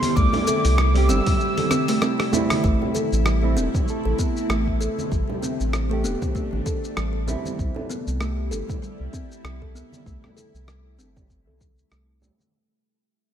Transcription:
Already playing: C3 G3 E4 A4 C6
0.02 open hi-hat, high conga, shaker
0.16 C2 A3 D6, kick, shaker
0.33 open hi-hat, high bongo, low conga
0.47 A4, high conga, shaker
0.65 C2, open hi-hat, shaker
0.78 G3, cross-stick, shaker
0.94 G3 C4 G4, open hi-hat
1.09 G1 C4 E6, high bongo, shaker
1.26 kick, open hi-hat, high conga, low conga, shaker
1.40 shaker
1.58 A4, open hi-hat, high conga
1.71 C4, cross-stick, high conga, shaker
1.88 A3, open hi-hat, shaker
2.02 C4, cross-stick, shaker
2.20 G4, cross-stick, open hi-hat
2.32 A3 C4 E4, low conga, shaker
2.50 cross-stick, open hi-hat, high conga, shaker
2.64 A1 C3 A3 E4, kick, shaker
2.81 high bongo, low conga
2.95 A4, high conga, shaker
3.13 A1, shaker
3.26 G3, cross-stick, shaker
3.43 A3 C4 E4
3.56 E1 C4, high bongo, shaker
3.75 kick, high conga, low conga, shaker
3.86 A3 A4, shaker
4.05 A1 A4
4.19 B3, kick, shaker
4.37 shaker
4.50 A1 A3, cross-stick, shaker
4.68 kick
4.81 A4, shaker
4.99 high conga, shaker
5.11 A1 G3 D4, kick, shaker
5.29 high bongo, low conga
5.42 C4, high conga, shaker
5.60 A1, shaker
5.73 cross-stick, shaker
5.89 A3 G4 A4
6.04 E1 B3, high bongo, shaker
6.22 kick, high conga, low conga, shaker
6.35 A3, kick, shaker
6.53 A1, high conga
6.66 A4, kick, high conga, shaker
6.84 shaker
6.97 A1 G3, cross-stick, shaker
7.27 G3 C4 E4, low conga, shaker
7.46 high conga, shaker
7.59 C2 G3 E4, kick, shaker
7.76 A4, high bongo, low conga
7.89 B3, high conga, shaker
8.07 C2, shaker
8.20 A3, cross-stick, shaker
8.51 G1 A4, high bongo, shaker
8.69 kick, high conga, low conga, shaker
8.82 G3, shaker
9.00 C2
9.13 C4, kick, shaker
9.32 shaker
9.44 C2, cross-stick, shaker
9.62 A4, kick
9.75 B3, shaker
9.92 high conga, shaker
10.06 C2 A3, kick, shaker
10.24 cross-stick, high bongo, low conga
10.37 A4, high conga, shaker
10.54 C2, shaker
10.68 G3, cross-stick, shaker
10.99 G1 C4, high bongo, shaker
11.16 kick, high conga, low conga, shaker
11.30 kick, shaker
11.47 C2 A4, high conga
11.60 G3, kick, high conga, shaker
11.78 shaker
11.91 C2 A3, cross-stick, shaker
12.22 A3, low conga, shaker
12.40 high conga, shaker

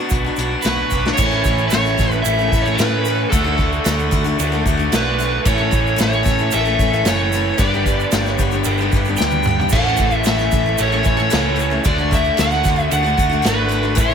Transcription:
Already playing: B2 D4 F#4
0.00 B3 D4 F#4
0.10 B1 B3, kick, closed hi-hat, shaker
0.24 B3 D4 F#4
0.36 B1 F#3 B3, closed hi-hat, shaker
0.41 D4 F#4
0.62 B1 B2 F#3 B3 B4, snare, closed hi-hat, shaker
0.67 D4 F#4
0.90 B1 F#3 B3, kick, shaker
0.95 D4 F#4
1.05 B3 D4 F#4, snare
1.13 A2 C#4 E4 C#5
1.17 A1 E3 A3 C#4 E4 A4, kick, crash, shaker
1.31 A3 C#4 A4
1.44 A1 E3 A3 C#4 A4, kick, shaker
1.58 shaker
1.68 A1 C#5, crash, shaker
1.72 A2 E3 A3 C#4 A4, snare
1.85 snare, shaker
1.98 A1 E3 A3 C#4 A4, kick, snare, shaker
2.11 C#4 A4, shaker
2.15 A3
2.22 A1 A2 E3 A3 C#4 E5, crash, shaker
2.27 E4
2.39 A3 C#4 A4, shaker
2.52 A1 E3 A3 C#4 A4, kick, shaker
2.62 A4 C#5, shaker
2.67 A3 C#4
2.75 B4, shaker
2.79 A2 E3 A3 C#4 A4, snare, crash
3.05 E3 A3 C#4, shaker
3.10 A4
3.30 D2 D3 A3 D4 F#4 A4, kick, crash, shaker
3.34 F#4
3.44 A3 D4 F#4
3.58 D3 A3 D4 F#4, kick
3.73 shaker
3.84 D2 D3 A3 D4 F#4, snare, crash, shaker
3.99 shaker
4.11 D2 D3 A3 D4 F#4, kick, shaker
4.24 A3 D4 F#4, shaker
4.37 D2 D3 A3 D4 F#4, crash, shaker
4.52 A3 D4 F#4, shaker
4.65 D2 D3 A3 D4 F#4, kick, shaker
4.77 A3 D4 F#4, shaker
4.92 B1 D3 A3 D4 F#4 B4, snare, crash, shaker
5.18 D3 A3 D4 F#4, shaker
5.45 A1 A2 E3 A3 C#4 E4 A4 C#5, kick, crash, shaker
5.58 A3 C#4 A4
5.71 A1 E3 A3 C#4 A4, kick, shaker
5.87 shaker
5.96 A1 A2 E3 A3 C#4 A4, crash, shaker
6.00 C#5, snare
6.13 shaker
6.23 A1 E3 A3 C#4 A4, kick, snare, shaker
6.38 A3 C#4 A4, shaker
6.51 A1 A2 E3 A3 C#4 A4 E5, crash, shaker
6.65 A3 C#4 A4, shaker
6.79 A1 E3 A3 C#4 A4, kick, shaker
6.93 A3 C#4 A4 E5, shaker
7.05 F#1 A2 E3 A3 C#4 A4 C#5, snare, crash, shaker
7.32 E3 A3 C#4 A4, shaker
7.57 G1 G2 D3 G3 B3 D4 G4 B4 D5, kick, crash, shaker
7.74 G3 B3 D4 G4
7.86 G3 B3 D4 G4, kick, shaker
8.00 shaker
8.12 G1 G2 D3 G3 B3 D4 G4, snare, crash, shaker
8.26 C#5, snare, shaker
8.38 G1 G3 B3 D4 G4, kick, shaker
8.51 G3 B3 D4 G4, shaker
8.64 G1 G2 D3 G3 B3 D4 G4, crash, shaker
8.78 D4 G4, shaker
8.82 G3 B3
8.92 G1 G3 B3 D4, kick, shaker
8.97 G4
9.05 G4, shaker
9.09 G3 B3 D4
9.17 G5, snare, shaker
9.21 D2 G2 D3 G3 B3 D4 G4
9.31 high tom, shaker
9.43 mid tom, shaker
9.47 G3 B3 G4
9.60 G3 B3 D4 G4, floor tom
9.69 A1 A2 A3 C#4 A4 F#5, kick, crash, shaker
9.74 E3 A3 C#4 E4 A4
9.86 A3 C#4 A4
9.97 A1 E3 A3 C#4 A4, kick, shaker
10.11 shaker
10.16 E5
10.24 A1 A2 E3 A3 C#4 A4 E5, snare, crash, shaker
10.38 snare, shaker
10.51 A1 E3 A3 C#4 A4, kick, shaker
10.66 A3 C#4 A4
10.78 A1 A2 E3 A3 C#4 A4 C#5, crash, shaker
10.92 A3 C#4 A4, shaker
11.03 A1 E3 A3 C#4 A4, kick, shaker
11.07 C#5
11.17 A3 C#4 A4, shaker
11.30 C#2 A2 E3 A3 C#4 A4, snare, crash, shaker
11.56 E3 A3 C#4 A4, shaker
11.70 A3 C#4 A4
11.84 D2 D3 A3 D4 F#4 A4 D5, kick, crash, shaker
11.98 A3 D4 F#4
12.11 D3 A3 D4 F#4 E5, kick, shaker
12.24 shaker
12.37 D2 D3 A3 D4 F#4 F#5, snare, crash, shaker
12.51 snare, shaker
12.63 D2 D3 A3 D4 F#4, kick, snare, shaker
12.76 A3 D4 F#4, shaker
12.90 D2 D3 A3 D4 F#4 F#5, crash, shaker
13.03 A3 D4 F#4, shaker
13.17 D2 D3 A3 D4 F#4, kick, shaker
13.29 A3 D4 F#4, shaker
13.42 G#1 D3 A3 D4 F#4, snare, crash, shaker
13.48 B4
13.68 D3 A3 D4 F#4, shaker
13.83 A3 D4 F#4
13.95 A1 A2 E3 A3 C#4 E4 A4, kick, crash, shaker
14.01 C#5
14.10 C#4 E4

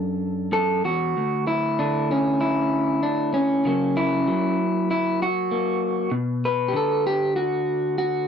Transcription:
Already playing: F#2 D4 A4
0.52 F#2 A4
0.85 E2 F#4
1.17 D2
1.47 E4
1.79 D3 D4
2.11 C#4
2.41 E4
3.03 D4
3.34 C#4
3.65 C#3 F#3 A#3
3.97 E4
4.27 F#3
4.91 E4
5.22 F#4
5.51 A#3
6.11 B2
6.45 B4
6.68 G4
6.73 D3 A4
7.07 G4
7.36 F#4
7.98 F#4

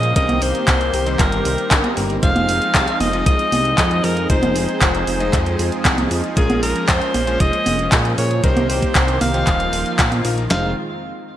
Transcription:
Already playing: A#2 F3 G#3 A#3 C#4 F4 G#4 C5 D#5
0.03 closed hi-hat
0.16 C2 D#3 G3 C4 D#4 G4 A#4 D#5, kick, closed hi-hat
0.29 C2, closed hi-hat, high conga
0.42 C2 C5, open hi-hat
0.55 closed hi-hat
0.68 C2, kick, clap, closed hi-hat
0.81 closed hi-hat
0.94 C2, open hi-hat
1.06 G3 C4 D#4 C5, closed hi-hat
1.19 G1 A#4, kick, clap, closed hi-hat
1.32 closed hi-hat
1.45 C2, open hi-hat
1.58 closed hi-hat
1.71 G1, kick, clap, closed hi-hat
1.84 closed hi-hat, high conga
1.97 G1 G3 C4 D#4 A#4, open hi-hat
2.10 closed hi-hat
2.23 F1 F3 G#3 D#4 F4 G#4 C5 F5, kick, closed hi-hat
2.36 F1, closed hi-hat, high conga
2.49 F1, open hi-hat
2.62 closed hi-hat
2.75 C2, kick, clap, closed hi-hat
2.88 closed hi-hat
3.00 F1 D#5, open hi-hat, high conga
3.13 G#3 D#4 F4 D#5, closed hi-hat
3.26 C2 D#5, kick, closed hi-hat
3.39 closed hi-hat
3.52 C2, open hi-hat, high conga
3.65 closed hi-hat
3.78 F2, kick, clap, closed hi-hat
3.91 closed hi-hat
4.04 F2 A#4, open hi-hat
4.17 closed hi-hat
4.30 F1 G#3 D#4 F4 C5, kick, closed hi-hat
4.42 F1, closed hi-hat, high conga
4.56 F1, open hi-hat
4.69 closed hi-hat
4.82 F1 C5, kick, clap, closed hi-hat
4.95 closed hi-hat
5.07 F1, open hi-hat
5.20 G#3 D#4 F4 D#5, closed hi-hat
5.33 F2, kick, clap, closed hi-hat
5.46 closed hi-hat
5.59 F2, open hi-hat
5.72 closed hi-hat
5.85 C2, kick, clap, closed hi-hat
5.98 closed hi-hat, high conga
6.11 F2, open hi-hat
6.24 closed hi-hat
6.37 A#1 G#3 A#3 C#4 F4 G#4 A#4, kick, closed hi-hat
6.50 A#1, closed hi-hat, high conga
6.63 A#1 A#4, open hi-hat
6.76 closed hi-hat
6.89 F2 C5, kick, clap, closed hi-hat
7.02 closed hi-hat
7.14 A#1, open hi-hat, high conga
7.27 G#3 C#4 F4 C5, closed hi-hat
7.40 F1 D#5, kick, closed hi-hat
7.53 closed hi-hat
7.66 F1, open hi-hat, high conga
7.79 closed hi-hat
7.92 A#2, kick, clap, closed hi-hat
8.05 closed hi-hat
8.18 A#2 C#5, open hi-hat
8.31 closed hi-hat
8.44 C2 D#3 G3 C4 D#4 G4 A#4 C5, kick, closed hi-hat
8.57 C2, closed hi-hat, high conga
8.69 C2 C5, open hi-hat
8.82 kick, closed hi-hat
8.95 C2 C5, kick, clap, closed hi-hat
9.08 closed hi-hat
9.21 C2 F5, open hi-hat, high conga
9.34 F3 A#3 D#4 C5, closed hi-hat
9.47 D#1 F3 F4, kick, clap, closed hi-hat
9.60 closed hi-hat
9.73 D#1, open hi-hat
9.86 closed hi-hat
9.99 A#1, kick, clap, closed hi-hat
10.12 closed hi-hat, high conga
10.25 A#1 F3 A#3 D#4 A#4, open hi-hat
10.38 closed hi-hat
10.51 F1 D#3 G#3 C4 D#4 F4 C5 F5, snare, clap

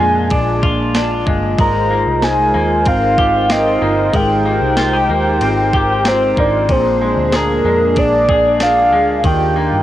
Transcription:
Already playing: A#2 A#3 D4 F4 G#5
0.00 F2 G#3
0.30 A#1 D4, kick, ride
0.63 F4, kick
0.95 D4, snare, ride, tambourine
1.27 G1 G#3, kick
1.58 G#1 G#3 D#4 A#4 C5 A#5, kick, ride
1.90 A#3
2.06 C2
2.22 G#5, snare, ride, tambourine
2.54 D#2 A#3
2.86 G#1 C4 F5, kick, ride
3.18 G4, kick
3.50 C4 D#5, snare, ride, tambourine
3.82 G1 A#3
4.14 G#1 G#3 G5, kick, ride
4.46 A#3
4.61 C2
4.77 F4, snare, ride, tambourine
4.93 G4
5.09 D#2 A#3
5.41 G#1 C4, ride
5.73 G4, kick
6.05 C4 C5, snare, ride, tambourine
6.37 G#1 A#3 D5, kick
6.68 A#1 A#2 A#3 D4 G#4 C5, kick, ride
7.02 G#3
7.16 D2
7.32 G#4 A#4, snare, ride, tambourine
7.64 F2 G#3
7.96 A#1 D4 D5, kick, ride
8.29 G#4, kick
8.60 D4 F5, snare, ride, tambourine
8.92 D2 G#3
9.23 D#2 D#3 D4 F4 G4 G5, kick, ride
9.56 A#3
9.72 G2

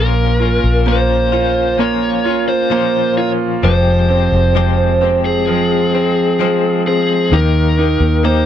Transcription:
Already playing: A#1 A#2 F3 A#3 C#4 F4 A#4
0.39 A#3 C#4 F4
0.64 A#1
0.86 A#2 F3 A#3 C#4 F4 C5
1.32 A#3 C#4 F4
1.78 F3 A#3 C#4 F4 C#5
2.24 A#3 C#4 F4
2.49 C5
2.70 A#2 F3 A#3 C#4 F4
3.17 F4 C#5
3.63 F1 F3 G#3 C4 G4 C5
4.09 G#3 C4 G4
4.32 F1
4.55 F3 G#3 C4 G4
5.01 G#3 C4 G4
5.25 G#4
5.47 F3 G#3 C4
5.95 G#3 C4
6.39 F3 G#3 C4
6.87 C4 G#4
7.32 D#2 D#3 A#3 D#4 G4 A#4
7.78 A#3 D#4 G4
8.00 D#2
8.23 D#3 A#3 D#4 G4 C5

